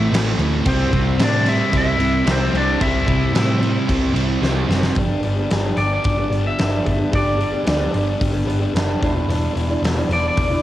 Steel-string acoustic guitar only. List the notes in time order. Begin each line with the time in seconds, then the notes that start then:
4.96 G2 D3 G3 B3 D4 G4
5.23 G3 B3 D4 G4
5.36 G3 B3 D4 G4
5.49 G2 D3 G3 B3 D4 G4
5.64 G3 B3 D4 G4
5.76 G3 B3 D4 G4
6.18 G3 B3 D4 G4
6.29 G3 B3 D4 G4
6.45 G3 B3 D4 G4
6.57 G2 D3 G3 B3 D4 G4
6.84 G3 B3 D4 G4
6.97 G3 B3 D4 G4
7.10 G2 D3 G3 B3 D4 G4
7.37 G3 B3 D4 G4
7.51 G3 B3 D4 G4
7.63 G2 D3 G3 B3 D4 G4
7.78 G3 B3 D4 G4
7.92 G3 B3 D4 G4
8.32 G3 B3 D4 G4
8.46 G3 B3 D4 G4
8.60 G3 B3 D4 G4
8.73 G2 D3 G3 B3 D4 G4
9.01 E2 B2 E3 G3 D4 E4
9.14 E3 G3 D4 E4
9.28 E2 B2 E3 G3 D4 E4
9.54 E3 G3 D4 E4
9.69 E3 G3 D4 E4
9.83 E2 B2 E3 G3 D4 E4
9.96 E3 G3 D4 E4
10.11 E3 G3 D4 E4
10.50 E3 G3 D4 E4